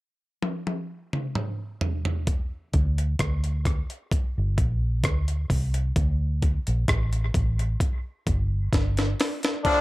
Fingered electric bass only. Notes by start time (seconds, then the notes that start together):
2.74 D2
3.20 D2
4.38 G1
4.58 A#1
5.05 D2
5.50 C2
5.96 D2
6.68 A#1
6.89 A1
7.35 A1
8.28 G1
8.73 G1